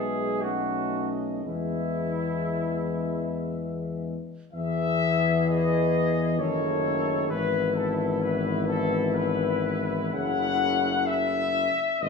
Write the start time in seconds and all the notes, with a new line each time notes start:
Already playing: B1 G#3 B3 G#4 E5
0.42 A3 C#4 F#4 D#5
1.45 E2 G#3 B3 E4 E5
4.53 E2 E3 B3 G#4 E5
5.48 D#5
6.39 F#1 D#3 A3 A4 C#5
7.30 G#1 E3 B3 E4 B4
7.76 A4
8.21 B4
8.67 A4
9.14 B4
10.14 F#1 C#3 A3 F#5
11.07 E5
12.00 G#1 B2 B3 F4 D#5